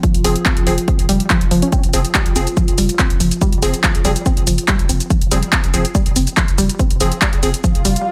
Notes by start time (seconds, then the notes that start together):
Already playing: F3 F4
0.03 F3, kick, closed hi-hat
0.14 F1, closed hi-hat
0.24 F1 F3 C4 G#4, open hi-hat
0.36 closed hi-hat
0.46 C4, kick, clap, closed hi-hat
0.57 F1, closed hi-hat
0.67 F1 F3 C4 G#4, open hi-hat
0.78 closed hi-hat
0.88 C4, kick, closed hi-hat
0.99 F1, closed hi-hat
1.09 F1 G3, open hi-hat
1.20 closed hi-hat
1.30 F3, kick, clap, closed hi-hat
1.41 F1, closed hi-hat
1.51 F1 F3, open hi-hat
1.62 C#4, closed hi-hat
1.72 C4, kick, closed hi-hat, shaker
1.83 F1, closed hi-hat, shaker
1.93 F1 F3 C4 G#4, open hi-hat, shaker
2.05 closed hi-hat, shaker
2.15 G3, kick, clap, closed hi-hat, shaker
2.26 F1, closed hi-hat, shaker
2.36 F1 F3 C4 G#4, open hi-hat, shaker
2.47 closed hi-hat, shaker
2.57 F3, kick, closed hi-hat, shaker
2.68 F1, closed hi-hat, shaker
2.78 F1 G3, open hi-hat, shaker
2.89 closed hi-hat, shaker
2.99 C4, kick, clap, closed hi-hat, shaker
3.10 F1, closed hi-hat, shaker
3.20 F1 F3, open hi-hat, shaker
3.31 closed hi-hat, shaker
3.41 G3, kick, closed hi-hat, shaker
3.52 F1, closed hi-hat, shaker
3.62 F1 F3 C4 G#4, open hi-hat, shaker
3.74 closed hi-hat, shaker
3.84 F3, kick, clap, closed hi-hat, shaker
3.95 F1, closed hi-hat, shaker
4.05 F1 F3 G3 C4 G#4, open hi-hat, shaker
4.16 closed hi-hat, shaker
4.26 C4, kick, closed hi-hat, shaker
4.37 F1, closed hi-hat, shaker
4.47 F1 F3, open hi-hat, shaker
4.58 closed hi-hat, shaker
4.68 G3, kick, clap, closed hi-hat, shaker
4.79 F1, closed hi-hat, shaker
4.89 F1 C4, open hi-hat, shaker
5.00 closed hi-hat, shaker
5.10 F3, kick, closed hi-hat, shaker
5.21 F1, closed hi-hat, shaker
5.31 F1 F3 G3 C4 G#4, open hi-hat, shaker
5.43 closed hi-hat, shaker
5.53 C4, kick, clap, closed hi-hat, shaker
5.64 F1, closed hi-hat, shaker
5.74 F1 F3 C4 G#4, open hi-hat, shaker
5.85 closed hi-hat, shaker
5.95 G3, kick, closed hi-hat, shaker
6.06 F1, closed hi-hat, shaker
6.16 F1 C4, open hi-hat, shaker
6.27 closed hi-hat, shaker
6.37 F3, kick, clap, closed hi-hat, shaker
6.48 F1, closed hi-hat, shaker
6.58 F1 G3, open hi-hat, shaker
6.69 closed hi-hat, shaker
6.79 C4, kick, closed hi-hat, shaker
6.90 F1, closed hi-hat, shaker
7.00 F1 F3 C4 G#4, open hi-hat, shaker
7.12 closed hi-hat, shaker
7.22 G3, kick, clap, closed hi-hat, shaker
7.33 F1, closed hi-hat, shaker
7.43 F1 F3 C4 G#4, open hi-hat, shaker
7.54 closed hi-hat, shaker
7.64 F3, kick, closed hi-hat, swell, shaker
7.75 F1, closed hi-hat, shaker
7.85 F1 G3, open hi-hat, shaker
7.96 closed hi-hat, shaker